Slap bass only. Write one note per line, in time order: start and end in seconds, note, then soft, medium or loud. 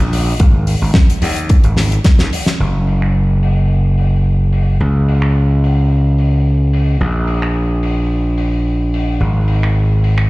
0.00 0.33 A#1 medium
0.40 0.74 G#1 loud
0.82 0.90 G#1 loud
1.22 1.56 D#2 medium
1.64 1.98 G#1 medium
2.20 2.28 D#2 medium
2.60 4.78 F#1 medium
4.80 6.98 C#2 medium
7.00 9.18 A#1 medium
9.20 10.30 G#1 medium